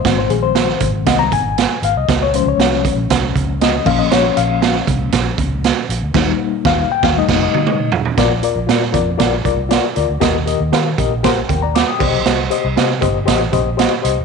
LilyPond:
<<
  \new Staff \with { instrumentName = "Reed electric piano" } { \time 4/4 \key aes \major \tempo 4 = 118 << { c''16 c''16 aes'16 c''4 r16 ees''16 bes''16 aes''4 f''16 ees''16~ | ees''16 des''16 c''16 des''4 r4 r16 ees''8 f''16 ees''16 | des''8 f''4 r2 r8 | r4 f''8 g''16 f''16 ees''8 ees''4 r8 |
\key bes \major r1 | r2 r8 <bes' g''>16 <d'' bes''>16 <f'' d'''>16 <g'' ees'''>8 r16 | r1 | } \\ { r1 | r1 | r1 | r1 |
<f' bes' d''>8 <f' bes' d''>8 <f' bes' d''>8 <f' bes' d''>8 <f' bes' d''>8 <f' bes' d''>8 <f' bes' d''>8 <f' bes' d''>8 | <g' bes' ees''>8 <g' bes' ees''>8 <g' bes' f''>8 <g' bes' ees''>8 <g' bes' c''>8 r4 <g' c'' d'' ees''>8~ | <g' c'' d'' ees''>8 <g' c'' ees''>8 <g' c'' ees''>8 <g' c'' ees''>8 <g' c'' ees''>8 <g' c'' ees''>8 <g' c'' ees''>8 <g' c'' ees''>8 | } >> }
  \new Staff \with { instrumentName = "Reed electric piano" } { \clef bass \time 4/4 \key aes \major <ees aes c'>2 <ees aes c'>8 r4. | r8 <f aes des'>2. <f bes des'>8~ | <f bes des'>2.~ <f bes des'>8 r8 | <g bes ees'>4. r8 <g a ees'>4. r8 |
\key bes \major bes,4. r2 r8 | ees4. r2 c8~ | c4 r2. | }
  \new Staff \with { instrumentName = "Fingered electric bass" } { \clef bass \time 4/4 \key aes \major aes,,8 bes,,4 aes,,8 c,8 aes,,8. r16 aes,,16 c,16 | des,8. des,16 c,8. bes,,16 c,8 des,4 bes,,8~ | bes,,8 bes,,4 c,8 bes,,8 des,8. r16 bes,,16 d,16 | ees,8 r8 ees,8 r16 ees,8 f,,8 r4 r16 |
\key bes \major bes,,8 r16 bes,,16 bes,8 f,8 bes,,8 c,8. r16 d,16 d,16 | ees,8. ees,16 ees8 bes,,4 ees,8. r16 c,16 ces,16 | c,8 r16 c,16 c8 g,,8 a,,8 bes,,8. r16 c,16 e,,16 | }
  \new DrumStaff \with { instrumentName = "Drums" } \drummode { \time 4/4 <hh bd sn>8 hh8 <hh sn>16 sn16 <hh bd>8 <hh bd sn>8 <hh bd>8 <hh sn>8 hh8 | <hh bd sn>8 hh8 <hh sn>16 sn16 <hh bd>8 <hh bd sn>8 <hh bd>8 <hh sn>8 <cymc bd>8 | <hh sn>8 hh8 <hh sn>16 sn16 <hh bd>8 <hh bd sn>8 <hh bd>8 <hh sn>8 hh8 | <cymc bd sn>4 <bd sn>8. <bd sn>16 r16 <cymc bd sn>8 tommh16 toml8 tomfh16 tomfh16 |
<hh bd sn>8 hh8 <hh sn>16 sn16 <hh bd>8 <hh bd sn>8 <hh bd>8 <hh sn>8 hh8 | <hh bd sn>8 hh8 <hh sn>8 <hh bd>8 <hh bd sn>8 <hh bd>8 <hh sn>8 <cymc bd>8 | <hh sn>8 hh8 <hh sn>16 sn16 <hh bd>8 <hh bd sn>8 <hh bd>8 <hh sn>8 hh8 | }
>>